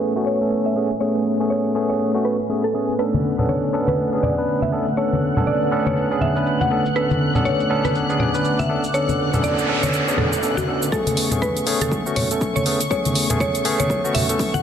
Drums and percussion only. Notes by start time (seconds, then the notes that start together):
0.02 cabasa
0.17 cabasa
0.41 cabasa
0.51 cabasa
0.66 cabasa
0.91 cabasa
1.01 cabasa
1.16 cabasa
1.40 cabasa
1.51 cabasa
1.65 cabasa
1.90 cabasa
2.00 cabasa
2.15 cabasa
2.40 cabasa
2.50 cabasa
2.64 cabasa
2.89 cabasa
2.99 cabasa
3.14 high conga, cabasa
3.39 low conga, cabasa
3.49 high conga, cabasa
3.64 cabasa
3.87 high conga, cabasa
3.98 cabasa
4.13 cabasa
4.23 high conga, low conga
4.38 cabasa
4.48 cabasa
4.62 high conga, cabasa
4.88 cabasa
4.98 cabasa
5.12 high conga, cabasa
5.37 low conga, cabasa
5.47 high conga, cabasa
5.62 cabasa
5.86 high conga, cabasa
5.97 cabasa
6.12 cabasa
6.21 high conga, low conga
6.36 cabasa
6.46 cabasa
6.61 high conga, cabasa
6.86 cabasa
6.96 cabasa
7.11 high conga, cabasa
7.35 low conga, cabasa
7.45 high conga, cabasa
7.60 cabasa
7.85 high conga, cabasa
7.95 cabasa
8.10 cabasa
8.20 high conga, low conga
8.35 cabasa
8.45 cabasa
8.59 high conga, cabasa
8.84 cabasa
8.94 cabasa
9.09 high conga, cabasa
9.34 low conga, cabasa
9.43 high conga, cabasa
9.59 cabasa
9.83 high conga, cabasa
9.94 cabasa
10.08 cabasa
10.17 high conga, low conga
10.33 cabasa
10.43 cabasa
10.57 high conga, cabasa
10.83 cabasa
10.92 kick, cabasa
11.07 closed hi-hat, high conga, cabasa
11.17 open hi-hat
11.31 closed hi-hat, low conga, cabasa
11.42 kick, high conga, cabasa
11.57 closed hi-hat, cabasa
11.67 open hi-hat
11.81 closed hi-hat, high conga, cabasa
11.92 kick, cabasa
12.07 cabasa
12.16 open hi-hat, high conga, low conga
12.31 closed hi-hat, cabasa
12.41 kick, cabasa
12.56 high conga, cabasa
12.66 open hi-hat
12.81 closed hi-hat, cabasa
12.91 kick, cabasa
13.05 closed hi-hat, high conga, cabasa
13.15 open hi-hat
13.30 closed hi-hat, low conga, cabasa
13.40 kick, high conga, cabasa
13.55 closed hi-hat, cabasa
13.65 open hi-hat
13.80 closed hi-hat, high conga, cabasa
13.90 kick, cabasa
14.05 cabasa
14.15 open hi-hat, high conga, low conga
14.29 closed hi-hat, cabasa
14.39 kick, open hi-hat, cabasa
14.54 high conga, cabasa